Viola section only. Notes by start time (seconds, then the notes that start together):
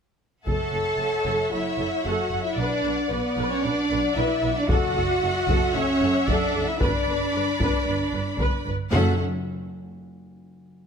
0.48 A4 C#5
0.74 A4
1.01 A4
1.27 A4
1.54 A4
1.79 A4
2.06 A4
2.33 A4
2.59 B4 D5
2.85 B4
3.12 B4
3.39 B4
3.66 B4
3.92 B4
4.18 B4
4.44 B4
4.71 A4
4.97 A4
5.23 A4
5.50 A4
5.76 A4 E5
6.03 A4
6.30 A4
6.56 A4
6.82 B4
7.09 B4
7.36 B4
7.62 B4
7.88 B4
8.14 B4
8.40 B4
8.67 B4
8.93 C#4 A4